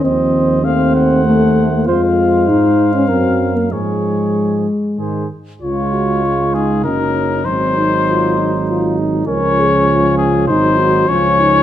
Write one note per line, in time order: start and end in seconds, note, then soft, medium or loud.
0.04 1.89 D#2 medium
0.04 0.66 F3 soft
0.04 0.62 C4 medium
0.04 0.64 C5 soft
0.04 0.66 D#5 soft
0.63 1.87 A3 medium
0.63 1.23 C4 medium
0.63 1.85 C5 soft
0.63 0.95 F5 medium
0.95 1.86 F#5 soft
1.25 1.71 A3 medium
1.72 1.88 A3 medium
1.87 2.50 F2 soft
1.87 3.10 G#3 soft
1.87 2.50 F4 medium
1.87 2.01 C5 medium
1.87 3.74 F5 soft
2.18 3.10 C5 soft
2.48 3.11 G#2 soft
2.48 2.93 D#4 medium
2.94 3.08 C#4 medium
3.09 3.72 F#2 soft
3.09 3.72 F#3 soft
3.09 3.57 C4 medium
3.09 3.72 A#4 soft
3.56 3.71 A#3 soft
3.72 4.68 G#2 soft
3.72 4.68 F3 soft
3.72 5.27 G#3 soft
3.72 4.67 G#4 soft
3.72 4.70 C#5 soft
4.98 5.28 G#2 soft
4.98 5.28 D#3 soft
4.98 5.28 G#4 soft
4.98 5.28 C5 soft
5.61 6.86 C#2 soft
5.61 6.87 G#3 soft
5.61 6.81 F4 soft
5.61 5.94 F4 soft
5.61 6.55 C#5 medium
5.93 6.26 F#4 soft
6.24 6.56 F4 soft
6.54 6.88 D#4 soft
6.54 6.84 G#4 soft
6.84 7.45 F#1 soft
6.84 7.45 F#3 soft
6.84 7.46 C#4 soft
6.84 7.45 D#4 soft
6.84 7.47 A#4 medium
7.45 9.24 G#1 soft
7.45 9.24 F#3 soft
7.45 7.76 C4 soft
7.45 9.24 D#4 soft
7.45 8.97 C5 medium
7.77 7.91 D#4 soft
8.09 8.38 F4 soft
8.38 8.52 D#4 soft
8.68 8.97 F4 medium
8.99 9.29 D#4 soft
9.26 10.50 C#2 medium
9.26 10.47 F3 soft
9.26 10.51 C#4 soft
9.26 9.61 A#4 medium
9.26 10.14 C#5 medium
9.60 9.89 G#4 soft
9.90 10.51 F4 medium
10.17 10.47 G#4 medium
10.48 11.08 G#1 medium
10.48 11.10 F#3 soft
10.48 11.08 D#4 soft
10.48 10.81 D#4 medium
10.48 11.10 C5 medium
10.79 11.08 F#4 medium
11.08 11.63 C#2 medium
11.08 11.63 F3 soft
11.08 11.63 C#4 medium
11.08 11.41 F4 medium
11.08 11.63 C#5 medium
11.39 11.63 D#4 medium